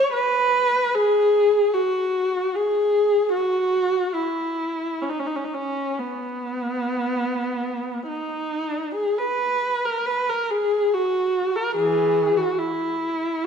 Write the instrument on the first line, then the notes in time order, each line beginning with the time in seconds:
viola
Already playing: C#5
0.13 B4
0.95 G#4
1.74 F#4
2.55 G#4
3.33 F#4
4.13 E4
5.02 C#4
5.09 D#4
5.20 C#4
5.27 D#4
5.36 C#4
5.44 D#4
5.54 C#4
5.99 B3
8.08 D#4
8.95 G#4
9.18 B4
9.85 A#4
10.06 B4
10.29 A#4
10.51 G#4
10.94 F#4
11.56 A#4
11.76 E3 G#4
12.37 F#4
12.58 E4